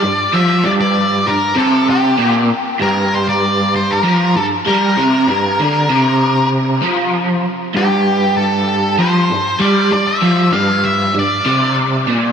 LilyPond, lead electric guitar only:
\new Staff \with { instrumentName = "Lead electric guitar" } { \time 4/4 \key g \dorian \tempo 4 = 97 d''8 e''8 d''16 d''8. bes'8 a'8 g'8. r16 | r8 bes'8 c''16 d''8. c''16 bes'8. a'8 bes'8~ | bes'2~ bes'8 r4. | r8 g'4 a'4 c''4 d''8 |
d''16 e''8. f''8 e''8 d''4 r4 | }